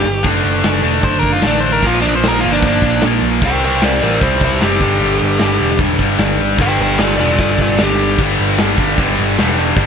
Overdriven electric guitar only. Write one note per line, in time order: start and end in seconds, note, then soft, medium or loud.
0.00 0.25 G4 loud
1.04 1.19 C5 loud
1.19 1.31 A#4 medium
1.32 1.45 F4 medium
1.47 1.59 D4 medium
1.60 1.72 C5 medium
1.72 1.84 A#4 loud
1.87 1.98 F4 medium
2.02 2.13 D4 medium
2.16 2.26 C5 medium
2.28 2.39 A#4 loud
2.40 2.52 F4 loud
2.52 2.64 D4 medium
2.66 3.03 D4 loud
3.46 3.63 A#4 medium
3.46 3.64 G5 loud
3.65 3.82 A#4 medium
3.65 3.84 G5 medium
3.83 4.01 A#4 medium
3.83 4.02 D5 loud
4.03 4.21 A#4 medium
4.03 4.22 D5 medium
4.22 4.41 E4 medium
4.22 4.42 C5 medium
4.44 4.62 E4 medium
4.44 4.63 C5 loud
4.63 5.78 G4 loud
6.61 6.80 B4 medium
6.61 6.80 G5 loud
6.81 6.99 B4 medium
6.81 7.01 G5 medium
6.98 7.17 F4 medium
6.98 7.19 D5 loud
7.19 7.38 F4 medium
7.19 7.38 D5 medium
7.39 7.58 F4 medium
7.39 7.59 D5 medium
7.61 7.79 F4 medium
7.61 7.80 D5 medium
7.83 8.20 G4 loud